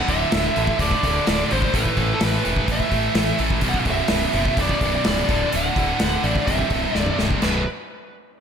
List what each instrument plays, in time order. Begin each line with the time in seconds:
0.06 fingered electric bass D1, distorted electric guitar D2 A2 D3, lead electric guitar E5, kick, open hi-hat
0.31 fingered electric bass D1, distorted electric guitar D2 A2 D3, snare, open hi-hat
0.55 fingered electric bass A1, distorted electric guitar D2 A2 D3, open hi-hat
0.67 kick
0.79 fingered electric bass D1, distorted electric guitar D2 A2 D3, lead electric guitar D5, kick, open hi-hat
0.91 kick
1.03 fingered electric bass D1, distorted electric guitar D2 A2 D3, kick, open hi-hat
1.27 fingered electric bass D1, distorted electric guitar D2 A2 D3, snare, open hi-hat
1.50 fingered electric bass G#1, distorted electric guitar D2 A2 D3, lead electric guitar C5, open hi-hat
1.62 kick
1.73 fingered electric bass A1, distorted electric guitar A2 E3 A3, lead electric guitar B4, kick, open hi-hat
1.86 kick
1.97 fingered electric bass A1, distorted electric guitar A2 E3 A3, kick, open hi-hat
2.15 lead electric guitar A4
2.20 fingered electric bass A1, distorted electric guitar A2 E3 A3, snare, open hi-hat
2.24 lead electric guitar B4
2.44 fingered electric bass E1, distorted electric guitar A2 E3 A3, open hi-hat
2.56 kick
2.66 fingered electric bass A1, distorted electric guitar A2 E3 A3, kick, open hi-hat
2.72 lead electric guitar E5
2.80 kick
2.90 fingered electric bass A1, distorted electric guitar A2 E3 A3, kick, open hi-hat
3.14 fingered electric bass A1, distorted electric guitar A2 E3 A3, snare, open hi-hat
3.38 fingered electric bass A1, distorted electric guitar A2 E3 A3, open hi-hat
3.50 kick
3.61 fingered electric bass B0, distorted electric guitar B1 F#2 B2, kick, open hi-hat
3.69 lead electric guitar F#5
3.74 kick
3.85 fingered electric bass B0, distorted electric guitar B1 F#2 B2, kick, open hi-hat
3.90 lead electric guitar E5
4.08 fingered electric bass B0, distorted electric guitar B1 F#2 B2, snare, open hi-hat
4.33 fingered electric bass F#1, distorted electric guitar B1 F#2 B2, open hi-hat
4.45 kick
4.57 fingered electric bass B0, distorted electric guitar B1 F#2 B2, lead electric guitar D5, kick, open hi-hat
4.69 kick
4.81 fingered electric bass B0, distorted electric guitar B1 F#2 B2, kick, open hi-hat
5.04 fingered electric bass C#1, distorted electric guitar B1 F#2 B2, lead electric guitar D5, snare, open hi-hat
5.28 fingered electric bass D1, distorted electric guitar D2 A2 D3, kick, open hi-hat
5.53 fingered electric bass D1, distorted electric guitar D2 A2 D3, lead electric guitar F#5, open hi-hat
5.75 fingered electric bass D1, distorted electric guitar D2 A2 D3, kick, open hi-hat
5.99 fingered electric bass D1, distorted electric guitar D2 A2 D3, lead electric guitar F#5, snare, open hi-hat
6.23 fingered electric bass A1, distorted electric guitar D2 A2 D3, lead electric guitar D5, open hi-hat
6.36 kick
6.46 fingered electric bass C1, distorted electric guitar C2 G2 C3, lead electric guitar E5, kick, open hi-hat
6.59 kick
6.70 fingered electric bass C1, distorted electric guitar C2 G2 C3, kick, open hi-hat
6.93 fingered electric bass C1, distorted electric guitar C2 G2 C3, snare
6.98 lead electric guitar D5
7.06 mid tom
7.16 fingered electric bass C1, distorted electric guitar C2 G2 C3, snare
7.31 kick
7.41 fingered electric bass B0, distorted electric guitar B1 F#2 B2, lead electric guitar B4, snare, china